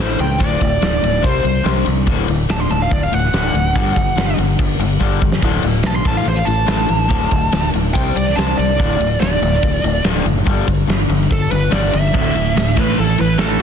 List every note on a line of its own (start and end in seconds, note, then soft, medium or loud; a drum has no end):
0.00 0.17 A1 medium
0.00 0.17 A2 medium
0.00 0.17 E3 medium
0.00 0.18 A3 medium
0.00 0.17 C5 medium
0.18 0.38 C#2 medium
0.18 0.37 A2 medium
0.18 0.38 E3 medium
0.18 0.40 G5 medium
0.18 ride medium
0.38 0.59 D1 loud
0.38 0.58 D2 medium
0.38 0.59 A2 medium
0.38 0.59 D3 loud
0.38 0.60 D5 medium
0.38 kick loud
0.38 ride medium
0.59 0.80 D1 loud
0.59 0.79 D2 medium
0.59 0.79 A2 medium
0.59 1.22 D5 medium
0.59 kick medium
0.59 ride medium
0.81 1.01 D1 loud
0.81 1.00 D2 medium
0.81 1.00 A2 medium
0.81 snare loud
0.81 ride medium
1.01 1.22 D1 medium
1.01 1.21 D2 medium
1.01 1.21 A2 medium
1.01 ride medium
1.21 1.43 C2 medium
1.21 1.41 C3 medium
1.21 1.42 G3 medium
1.21 1.43 C4 loud
1.21 kick loud
1.21 ride medium
1.26 1.66 C5 medium
1.42 1.63 C2 medium
1.42 1.62 C3 medium
1.42 1.63 G3 medium
1.42 ride medium
1.64 1.84 C2 medium
1.64 1.84 C3 medium
1.64 1.84 G3 medium
1.64 1.85 C4 loud
1.64 snare loud
1.64 ride loud
1.85 2.06 C2 medium
1.85 2.05 C3 medium
1.85 2.05 G3 medium
1.85 ride medium
2.06 2.26 D1 loud
2.06 2.26 D2 medium
2.06 2.27 A2 medium
2.06 2.27 D3 loud
2.06 kick loud
2.06 ride medium
2.28 2.48 D1 medium
2.28 2.47 D2 medium
2.28 2.47 A2 medium
2.28 ride medium
2.49 2.68 D1 medium
2.49 2.68 D2 medium
2.49 2.68 A2 medium
2.49 2.60 A5 medium
2.49 snare loud
2.49 ride medium
2.60 2.71 C6 medium
2.70 2.90 D1 medium
2.70 2.88 D2 medium
2.70 2.89 A2 medium
2.70 2.81 A5 medium
2.70 ride medium
2.82 2.92 F5 medium
2.82 snare soft
2.90 3.10 D1 medium
2.90 3.09 D2 medium
2.90 3.10 A2 medium
2.90 3.02 D5 loud
2.90 kick loud
2.90 ride medium
3.03 3.14 F5 medium
3.11 3.31 D1 medium
3.11 3.31 D2 medium
3.11 3.31 A2 medium
3.11 4.35 F#5 medium
3.11 ride medium
3.24 snare soft
3.33 3.52 D1 medium
3.33 3.53 D2 medium
3.33 3.53 A2 medium
3.33 3.53 D3 medium
3.33 snare loud
3.33 ride loud
3.54 3.73 D1 medium
3.54 3.73 D2 medium
3.54 3.73 A2 medium
3.54 ride medium
3.75 3.94 G1 loud
3.75 3.94 G2 medium
3.75 3.94 D3 loud
3.75 3.95 G3 loud
3.75 kick loud
3.75 ride medium
3.95 4.15 G1 medium
3.95 4.14 G2 medium
3.95 4.14 D3 medium
3.95 kick medium
3.95 ride medium
4.16 4.36 G1 loud
4.16 4.35 G2 medium
4.16 4.35 D3 medium
4.16 snare loud
4.16 ride medium
4.37 4.57 G1 medium
4.37 4.56 G2 medium
4.37 4.56 D3 medium
4.37 ride medium
4.59 4.78 G1 medium
4.59 4.78 G2 medium
4.59 4.78 D3 medium
4.59 kick loud
4.59 ride loud
4.79 4.98 G1 medium
4.79 4.98 G2 medium
4.79 4.99 D3 medium
4.79 ride medium
5.00 5.20 G1 medium
5.00 5.19 G2 medium
5.00 5.20 D3 medium
5.00 5.21 G3 medium
5.00 kick medium
5.21 5.41 G1 medium
5.21 5.40 G2 medium
5.21 5.40 D3 medium
5.21 kick medium
5.32 snare medium
5.42 5.62 D1 loud
5.42 5.61 D2 medium
5.42 5.62 A2 loud
5.42 5.63 D3 loud
5.42 kick loud
5.42 ride medium
5.42 crash medium
5.63 5.82 D1 loud
5.63 5.82 D2 medium
5.63 5.82 A2 medium
5.63 ride medium
5.83 6.03 B1 medium
5.83 6.04 D2 medium
5.83 6.04 A2 medium
5.83 snare loud
5.83 ride medium
5.87 5.95 A5 loud
5.96 6.07 C6 medium
6.05 6.24 A1 medium
6.05 6.25 A2 medium
6.05 6.25 E3 medium
6.05 6.25 A3 medium
6.05 6.16 A5 medium
6.05 kick loud
6.05 ride medium
6.17 6.27 F5 medium
6.17 snare soft
6.25 6.45 A1 medium
6.25 6.45 A2 medium
6.25 6.45 E3 medium
6.25 6.37 C5 medium
6.25 ride medium
6.36 6.47 F5 medium
6.45 6.66 A1 medium
6.45 6.64 A2 medium
6.45 6.65 E3 medium
6.45 7.68 A5 loud
6.45 ride medium
6.66 6.88 A1 medium
6.66 6.86 A2 medium
6.66 6.86 E3 loud
6.66 6.87 A3 loud
6.66 snare loud
6.66 ride loud
6.87 7.08 A1 medium
6.87 7.07 A2 medium
6.87 7.07 E3 medium
6.87 ride medium
7.08 7.30 D1 loud
7.08 7.29 D2 medium
7.08 7.29 A2 medium
7.08 7.29 D3 loud
7.08 kick loud
7.08 ride medium
7.30 7.51 D1 loud
7.30 7.50 D2 medium
7.30 7.50 A2 medium
7.30 kick medium
7.30 ride medium
7.52 7.72 D1 loud
7.52 7.71 D2 medium
7.52 7.71 A2 medium
7.52 snare loud
7.52 ride loud
7.73 7.93 D1 medium
7.73 7.92 D2 medium
7.73 7.92 A2 medium
7.73 ride medium
7.93 8.14 C2 medium
7.93 8.14 C3 loud
7.93 8.14 G3 loud
7.93 8.14 C4 loud
7.93 8.14 G5 loud
7.93 kick loud
7.93 ride loud
8.15 8.34 C2 medium
8.15 8.34 C3 medium
8.15 8.34 G3 medium
8.15 8.36 D5 medium
8.15 ride medium
8.29 snare soft
8.36 8.56 C2 medium
8.36 8.56 C3 loud
8.36 8.56 G3 loud
8.36 8.57 C4 loud
8.36 8.56 A5 medium
8.36 snare loud
8.36 ride loud
8.57 8.77 C2 medium
8.57 8.76 C3 medium
8.57 8.77 G3 medium
8.57 9.18 D5 loud
8.57 ride medium
8.78 8.98 D1 loud
8.78 8.98 D2 medium
8.78 8.98 A2 medium
8.78 8.99 D3 loud
8.78 kick loud
8.78 ride medium
8.99 9.19 D1 loud
8.99 9.18 D2 medium
8.99 9.18 A2 medium
8.99 ride medium
9.20 9.39 D1 loud
9.20 9.39 D2 medium
9.20 9.39 A2 medium
9.20 10.02 D5 loud
9.20 snare loud
9.20 ride medium
9.41 9.60 D1 medium
9.41 9.60 D2 medium
9.41 9.61 A2 medium
9.41 ride medium
9.53 snare soft
9.63 9.82 D1 medium
9.63 9.81 D2 medium
9.63 9.81 A2 medium
9.63 kick loud
9.63 ride loud
9.83 10.02 D1 medium
9.83 10.02 D2 medium
9.83 10.03 A2 medium
9.83 ride medium
10.04 10.23 D1 medium
10.04 10.24 D2 medium
10.04 10.24 A2 loud
10.04 10.24 D3 loud
10.04 snare loud
10.04 ride loud
10.25 10.44 F#1 medium
10.25 10.44 D2 medium
10.25 10.44 A2 medium
10.25 ride medium
10.45 10.65 G1 loud
10.45 10.65 G2 medium
10.45 10.66 D3 medium
10.45 10.66 G3 loud
10.45 kick loud
10.45 ride medium
10.67 10.86 G1 medium
10.67 10.86 G2 medium
10.67 10.86 D3 medium
10.67 kick medium
10.67 ride medium
10.87 11.07 G1 medium
10.87 11.07 G2 medium
10.87 11.07 D3 medium
10.87 snare loud
10.87 ride medium
11.09 11.28 G1 medium
11.09 11.28 G2 medium
11.09 11.28 D3 medium
11.09 ride medium
11.21 snare soft
11.30 11.50 G1 medium
11.30 11.49 G2 medium
11.30 11.49 D3 medium
11.30 11.51 A4 loud
11.30 kick loud
11.30 ride loud
11.51 11.71 G1 medium
11.51 11.69 G2 medium
11.51 11.70 D3 medium
11.51 11.72 B4 medium
11.51 ride medium
11.70 11.91 G1 medium
11.70 11.91 G2 medium
11.70 11.91 D3 medium
11.70 11.91 G3 loud
11.70 11.92 D5 medium
11.70 snare loud
11.70 ride loud
11.92 12.13 G1 medium
11.92 12.12 G2 medium
11.92 12.12 D3 medium
11.92 12.75 E5 loud
11.92 ride medium
12.13 12.34 D1 loud
12.13 12.32 D2 medium
12.13 12.33 A2 medium
12.13 12.34 D3 loud
12.13 kick loud
12.13 crash medium
12.33 12.55 D1 medium
12.33 12.53 D2 medium
12.33 12.53 A2 medium
12.33 ride medium
12.54 12.75 D1 medium
12.54 12.74 D2 medium
12.54 12.74 A2 medium
12.54 snare loud
12.54 ride loud
12.76 12.96 A1 medium
12.76 12.96 A2 medium
12.76 12.96 E3 medium
12.76 12.96 A3 medium
12.76 12.99 B4 medium
12.76 kick loud
12.76 crash loud
12.89 snare soft
12.98 13.17 A1 medium
12.98 13.17 A2 medium
12.98 13.17 E3 medium
12.98 13.19 A4 medium
13.18 13.38 A1 medium
13.18 13.37 A2 medium
13.18 13.37 E3 medium
13.18 13.39 B4 medium
13.18 ride medium
13.38 13.59 A1 medium
13.38 13.58 A2 medium
13.38 13.59 E3 medium
13.38 13.59 A3 medium
13.38 13.60 A4 medium
13.38 snare loud
13.38 ride medium